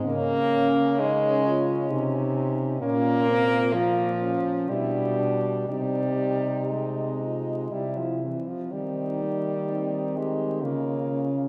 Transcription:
<<
  \new Staff \with { instrumentName = "French horn" } { \time 3/4 \key f \minor \tempo 4 = 63 des'2. | f'4. r8 e'8 d'8 | ees'2 e'8 r8 | ees'4 ees'8 g'8 f'4 | }
  \new Staff \with { instrumentName = "French horn" } { \time 3/4 \key f \minor des'4 ees'8 f'8 ees'4 | des'8 c'8 bes8 des'8 d'8 r8 | c'4 c'8 f'8 e'8 c'8 | c'8 bes8 c'4 des'8 des'8 | }
  \new Staff \with { instrumentName = "French horn" } { \clef bass \time 3/4 \key f \minor bes4 aes4 r4 | bes4 f4 g4 | g4 aes4 g16 f16 e16 f16 | g4. aes8 bes8. r16 | }
  \new Staff \with { instrumentName = "French horn" } { \clef bass \time 3/4 \key f \minor des2 c4 | bes,4. r8 b,4 | c2 c8 r8 | ees2 des4 | }
>>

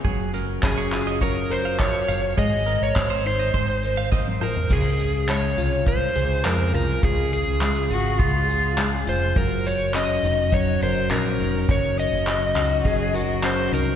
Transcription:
<<
  \new Staff \with { instrumentName = "Clean electric guitar" } { \time 4/4 \key des \major \tempo 4 = 103 aes'8 bes'8 r16 des''16 r16 ees''16 des''16 r8 f''16 r8 f''16 r16 | aes'8 bes'8 r16 c''16 r16 ees''16 c''16 r8 f''16 ees''16 r16 c''16 r16 | r1 | r1 |
r1 | r1 | }
  \new Staff \with { instrumentName = "Electric slide guitar" } { \time 4/4 \key des \major r4 aes'4 bes'8 c''8 des''4 | ees''8. des''8. c''2 bes'8 | aes'4 des''4 c''4 bes'8 bes'8 | aes'8 aes'2. c''8 |
bes'8 des''8 ees''4 des''8 c''8 bes'4 | des''8 ees''2~ ees''8 c''8 bes'8 | }
  \new Staff \with { instrumentName = "Cello" } { \time 4/4 \key des \major r1 | r1 | r1 | r4. ges'8 f'4~ f'16 r8. |
r1 | r4. ges'8 aes'8 ges'8. r8. | }
  \new Staff \with { instrumentName = "Steel-string acoustic guitar" } { \time 4/4 \key des \major ges8 des'8 des'8 f'8 ges8 bes'8 des'8 des'8 | aes8 c'8 c'8 ees'8 aes8 bes'8 c'8 c'8 | des4 aes8 f'8 des8 aes'8 aes8 f'8 | des4 aes8 f'8 des8 aes'8 aes8 f'8 |
ges4 des'8 ees'8 ges8 bes'8 des'8 ees'8 | ges4 des'8 ees'8 ges8 bes'8 des'8 ees'8 | }
  \new Staff \with { instrumentName = "Fretless electric bass" } { \clef bass \time 4/4 \key des \major ges,,4 ges,,2~ ges,,8 ges,,8 | aes,,8. aes,,16 aes,,4 aes,,4. r8 | des,4. c,4 des,8 f,8 c,8 | des,8. des,8. aes,,8 des,4. f,,8 |
ges,,4. f,,4 ges,,8 bes,,8 f,,8 | ges,,8. ges,,8. des,8 ges,,4. c,8 | }
  \new DrumStaff \with { instrumentName = "Drums" } \drummode { \time 4/4 bd8 tamb8 <hc bd>8 <hc tamb>8 bd8 tamb8 <hc bd>8 tamb8 | bd8 tamb8 <hc bd>8 tamb8 bd8 tamb8 <bd sn>16 tommh16 toml16 tomfh16 | <cymc bd>8 tamb8 hc8 tamb8 bd8 tamb8 hc8 tamb8 | bd8 tamb8 hc8 tamb8 bd8 tamb8 hc8 tamb8 |
bd8 tamb8 hc8 tamb8 bd8 tamb8 hc8 tamb8 | bd8 tamb8 hc8 <hc tamb>8 bd8 tamb8 hc8 tamb8 | }
>>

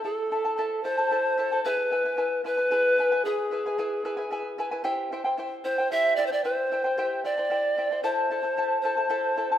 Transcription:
<<
  \new Staff \with { instrumentName = "Charango" } { \time 6/8 \key e \minor \tempo 4. = 75 <e' a' e'' a''>8 <e' a' e'' a''>16 <e' a' a''>16 <e' a' c'' e'' a''>8 <e' a' e'' a''>16 <e' a' a''>16 <e' a' e'' a''>8 <e' a' e'' a''>16 <e' a' a''>16 | <e' gis' b' e'' gis''>8 <e' b' e'' gis''>16 <e' b' gis''>16 <e' b' e'' gis''>8 <e' b' e'' gis''>16 <e' b' gis''>16 <e' gis' b' e'' gis''>8 <e' b' e'' gis''>16 <e' b' gis''>16 | <e' b' e'' gis''>8 <e' b' e'' gis''>16 <e' b' gis''>16 <e' gis' b' e'' gis''>8 <e' b' e'' gis''>16 <e' b' gis''>16 <e' b' e'' gis''>8 <e' b' e'' gis''>16 <e' b' gis''>16 | <e' g' c'' e'' g''>8 <e' c'' e'' g''>16 <e' c'' g''>16 <e' c'' e'' g''>8 <e' c'' e'' g''>16 <e' c'' g''>16 <e' g' c'' e'' g''>8 <e' c'' e'' g''>16 <e' c'' g''>16 |
<e' c'' e'' g''>8 <e' c'' e'' g''>16 <e' c'' g''>16 <e' g' c'' e'' g''>8 <e' c'' e'' g''>16 <e' c'' g''>16 <e' c'' e'' g''>8 <e' c'' e'' g''>16 <e' c'' g''>16 | <e' a' c'' e'' a''>8 <e' a' e'' a''>16 <e' a' a''>16 <e' a' e'' a''>8 <e' a' e'' a''>16 <e' a' a''>16 <e' a' c'' e'' a''>8 <e' a' e'' a''>16 <e' a' a''>16 | }
  \new Staff \with { instrumentName = "Pan flute" } { \time 6/8 \key e \minor a'4. c''4. | b'4. b'4. | gis'2~ gis'8 r8 | r4. c''8 e''8 d''32 c''32 d''16 |
c''4. d''4. | c''4. c''4. | }
>>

